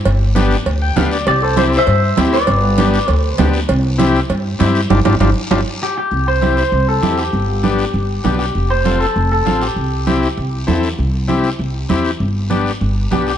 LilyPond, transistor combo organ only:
\new Staff \with { instrumentName = "Transistor combo organ" } { \time 4/4 \key c \major \tempo 4 = 197 r4 <b d' g'>8 r4 g''8 <b d' g' f''>8 d''8 | r4 <c' e' g'>8 r4. <c' e' g'>8 r8 | r4 <b d' g'>8 r4. <b d' g'>8 r8 | r4 <c' e' g'>8 r4. <c' e' g'>8 r8 |
<d' f' g'>8 <d' f' g'>8 <d' f' g'>8 r8 <d' f' g'>8 r4. | r4 <c' e' g'>8 r4. <c' e' g'>8 r8 | r4 <b d' g'>8 r4. <b d' g'>8 r8 | r4 <c' f' a'>8 r4. <c' f' a'>8 r8 |
r4 <c' e' g'>8 r4. <c' e' a'>8 r8 | r4 <c' e' g'>8 r4. <c' e' g'>8 r8 | r4 <b d' g'>8 r4. <b d' g'>8 r8 | }